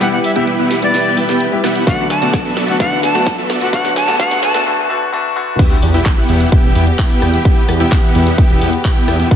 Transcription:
Already playing: G3 E4 B4, riser
0.00 G3 B3 E4 G4 E5 F#5 G5, snare, closed hi-hat
0.13 F#5, closed hi-hat
0.24 E5, open hi-hat
0.35 G3 B3 E4 G4 E5 G5, closed hi-hat
0.47 closed hi-hat
0.59 B3 E4 G4 E5 F#5, closed hi-hat
0.71 snare, open hi-hat
0.82 G3 B3 E4 G4 D5, closed hi-hat
0.94 B3 E4 G4 E5 G5, snare, closed hi-hat
1.06 closed hi-hat
1.17 G3 B3 E4 G4, open hi-hat
1.29 B3 E4 G4 E5 G5, snare, closed hi-hat
1.40 closed hi-hat
1.52 G3 B3 E4 G4, closed hi-hat
1.64 B3 E4 G4 E5 F#5, cross-stick, snare, open hi-hat
1.75 closed hi-hat
1.87 D3 F#3 A3 B3 D4 F#4 D5 F#5, kick, snare, closed hi-hat
1.99 closed hi-hat
2.10 A5, snare, open hi-hat
2.21 D3 A3 B3 D4 F#4 A4 D5 F#5, closed hi-hat
2.34 kick, snare, closed hi-hat
2.45 B3 F#4 A4 D5 E5, closed hi-hat
2.57 snare, open hi-hat
2.68 D3 A3 B3 D4 F#4 F#5, closed hi-hat
2.79 D3 A3 B3 D4 F#4 F#5, kick, snare, closed hi-hat
2.92 closed hi-hat
3.03 A5, snare, open hi-hat
3.14 D3 A3 B3 D4 F#4 A4 D5 F#5, closed hi-hat
3.27 kick, snare, closed hi-hat
3.38 B3 F#4 A4 D5 E5, closed hi-hat
3.50 snare, open hi-hat
3.61 D3 A3 B3 D4 F#4 F#5, closed hi-hat
3.72 D3 A3 B3 D4 F#4 A4 C#5 D5 F#5, kick, snare, closed hi-hat
3.85 snare, closed hi-hat
3.96 A5, snare, open hi-hat
4.07 D3 A3 B3 D4 F#4 A4 D5 F#5, snare, closed hi-hat
4.19 D3 A3 B3 D4 F#4 D5 F#5, kick, snare, closed hi-hat
4.31 snare, closed hi-hat
4.43 A5, snare, open hi-hat
4.54 D3 A3 B3 D4 F#4 A4 D5 F#5, snare, closed hi-hat
4.66 D3 A3 B3 D4 F#4
4.89 D3 A3 B3 D4 F#4
5.12 D3 A3 B3 D4 F#4
5.35 D3 A3 B3 D4 F#4
5.59 E3 B3 E4 G4 E5 G5, kick, closed hi-hat, crash, sub drop
5.71 closed hi-hat
5.82 E2, open hi-hat
5.94 B3 E4 G4 E5 G5, closed hi-hat
6.06 kick, clap, closed hi-hat
6.17 B3 E4 G4 E5 F#5, closed hi-hat
6.29 E2, open hi-hat
6.41 closed hi-hat
6.52 E4 G4 G5, kick, closed hi-hat
6.64 E1, closed hi-hat
6.75 E2, open hi-hat
6.87 closed hi-hat
6.99 B3 E4 G4 E5 G5, kick, clap, closed hi-hat
7.10 closed hi-hat
7.22 E2, cross-stick, open hi-hat
7.34 B3 E4 G4 E5 G5, closed hi-hat
7.45 B3 E4 G4 E5, kick, closed hi-hat
7.57 closed hi-hat
7.69 E2, cross-stick, open hi-hat
7.80 B3 E4 G4 E5 G5, closed hi-hat
7.92 kick, clap, closed hi-hat
8.03 B3 E4 G4 E5 F#5, closed hi-hat
8.15 E2, open hi-hat
8.27 closed hi-hat
8.38 B3 E4 G4 E5 G5, kick, closed hi-hat
8.50 E1, closed hi-hat
8.62 E2, open hi-hat
8.73 closed hi-hat
8.85 B3 E4 G4 E5 G5, kick, clap, closed hi-hat
8.96 closed hi-hat
9.08 E2, cross-stick, open hi-hat
9.20 B3 E4 G4 E5 G5, closed hi-hat
9.31 D3 B3 F#4 A4 D5 F#5, kick, closed hi-hat

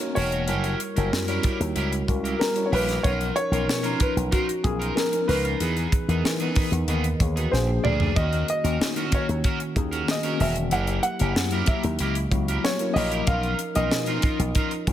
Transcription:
Already playing: A#4
0.00 A#3 D#4 F#4 C#5, muted clean electric guitar stroke, closed hi-hat
0.15 E1 C#4 F#4 A#4 C#5, open hi-hat
0.32 C#4 F#4 A#4, closed hi-hat
0.48 F#1 G3 E4 F#4 G4 A#4, closed hi-hat
0.64 closed hi-hat
0.80 muted clean electric guitar stroke, closed hi-hat
0.96 F#1 G3 E4 F#4 G4 A#4, closed hi-hat
1.12 F#2, muted clean electric guitar stroke, snare
1.27 G3 E4 F#4 G4 A#4 C#5, closed hi-hat
1.43 E4 G4 A#4, kick, closed hi-hat
1.60 D#2, muted clean electric guitar stroke, closed hi-hat
1.76 C#2 E4 G4 A#4, closed hi-hat
1.92 muted clean electric guitar stroke, closed hi-hat
2.07 C#2 G3 E4 F#4 A#4, muted clean electric guitar stroke, kick, closed hi-hat
2.24 E4 G4 A#4, closed hi-hat
2.39 A#4, muted clean electric guitar stroke, snare
2.55 G3 E4 F#4 C#5, muted clean electric guitar stroke, closed hi-hat
2.66 C#5
2.72 A#1 E4 G4 A#4 B4, open hi-hat
2.88 E4 G4 A#4, snare, closed hi-hat
3.03 B1 F3 C#4 D#4 F4 A#4 C#5, kick, closed hi-hat
3.21 closed hi-hat
3.36 C#5, muted clean electric guitar stroke, closed hi-hat
3.51 B1 F3 C#4 D#4 F4 A#4, closed hi-hat
3.68 B2, muted clean electric guitar stroke, snare
3.83 F3 C#4 D#4 F4 A#4 A#5, closed hi-hat
3.99 D#4 F4 A#4 B4, kick, closed hi-hat
4.16 B1, muted clean electric guitar stroke, closed hi-hat
4.31 D#4 F4 F#4 A#4, kick, closed hi-hat
4.48 muted clean electric guitar stroke, closed hi-hat
4.64 B1 F3 C#4 D#4 G#4 A#4, muted clean electric guitar stroke, kick, closed hi-hat
4.79 D#4 F4 A#4, closed hi-hat
4.96 A#4, muted clean electric guitar stroke, snare
5.12 F3 C#4 D#4 A#4, muted clean electric guitar stroke, closed hi-hat
5.28 C#2 D#4 F4 A#4 B4, snare, open hi-hat
5.45 D#4 F4 A#4, closed hi-hat
5.60 E2 E3 B3 D#4 G#4, closed hi-hat
5.77 closed hi-hat
5.92 muted clean electric guitar stroke, kick, closed hi-hat
6.08 E2 E3 B3 D#4 G#4 A#4, closed hi-hat
6.24 E3, muted clean electric guitar stroke, snare
6.40 E3 B3 D#4 G#4 B4, closed hi-hat
6.55 B3 D#4 G#4, kick, open hi-hat
6.71 E2, muted clean electric guitar stroke, closed hi-hat
6.87 D#2 B3 D#4 G#4 A#4 D#5, closed hi-hat
7.04 muted clean electric guitar stroke, closed hi-hat
7.20 D#2 G#4 C#5, muted clean electric guitar stroke, kick, closed hi-hat
7.36 B3 D#4 F#4 G#4 B4, closed hi-hat
7.51 A#1 F3 A#3 D4 G#4 C5, muted clean electric guitar stroke, snare
7.67 F3 A#3 D4 G#4, muted clean electric guitar stroke
7.84 D2 A#3 D4 G#4 D5, mid tom
8.00 A#3 D4 G#4, floor tom
8.16 D#2 D#3 A#3 C#4 F#4 A#4 D#5, kick, closed hi-hat
8.33 closed hi-hat
8.48 D#5, muted clean electric guitar stroke, closed hi-hat
8.64 D#2 D#3 A#3 C#4 F#4 A#4, closed hi-hat
8.80 D#3, muted clean electric guitar stroke, snare
8.96 D#3 A#3 C#4 E4 F#4 A#4, closed hi-hat
9.04 F#4
9.12 C#4 F#4 A#4 C#5, kick, closed hi-hat
9.29 D#2, closed hi-hat
9.44 C#4 F#4 A#4, kick, closed hi-hat
9.60 muted clean electric guitar stroke, closed hi-hat
9.76 D#2 D#3 A#3 C#4 G#4, muted clean electric guitar stroke, kick, closed hi-hat
9.91 C#4 F#4 A#4, closed hi-hat
10.08 D#5, muted clean electric guitar stroke, snare
10.23 D#3 A#3 C#4 F#4 A#4, closed hi-hat
10.39 E1 C#4 F#4 A#4 E5, open hi-hat
10.56 muted clean electric guitar stroke, closed hi-hat
10.71 F#1 F#3 A#3 E4 G4 A#4 F#5, closed hi-hat
10.87 closed hi-hat
11.03 F#5, muted clean electric guitar stroke, closed hi-hat
11.19 F#1 F#3 A#3 E4 G4 A#4, closed hi-hat
11.36 F#2, snare
11.51 F#3 A#3 E4 G4 A#4, closed hi-hat
11.66 E4 G4 A#4 E5, kick, closed hi-hat
11.83 D#2, muted clean electric guitar stroke, closed hi-hat
11.99 C#2 E4 G4 A#4, closed hi-hat
12.15 muted clean electric guitar stroke, closed hi-hat
12.30 C#2 F#3 A#3 E4 F#4, muted clean electric guitar stroke, kick, closed hi-hat
12.48 E4 G4 A#4, closed hi-hat
12.64 C#5, muted clean electric guitar stroke, snare
12.79 F#3 A#3 E4 A#4, muted clean electric guitar stroke, closed hi-hat
12.94 A#1 E4 G4 A#4 D#5, open hi-hat
13.12 E4 G4 A#4, closed hi-hat
13.26 B1 F3 C#4 D#4 F4 A#4 F5, kick, closed hi-hat
13.43 closed hi-hat
13.59 muted clean electric guitar stroke, closed hi-hat
13.75 B1 F3 C#4 D#4 F4 A#4 D#5, closed hi-hat
13.91 B2, muted clean electric guitar stroke, snare
14.06 F3 C#4 D#4 F4 A#4, closed hi-hat
14.22 D#4 F4 A#4, kick, closed hi-hat
14.39 B1, muted clean electric guitar stroke, closed hi-hat
14.55 D#4 F4 A#4, kick, closed hi-hat
14.71 muted clean electric guitar stroke, closed hi-hat
14.87 B1 F3 C#4 D#4 F4, muted clean electric guitar stroke, kick, closed hi-hat

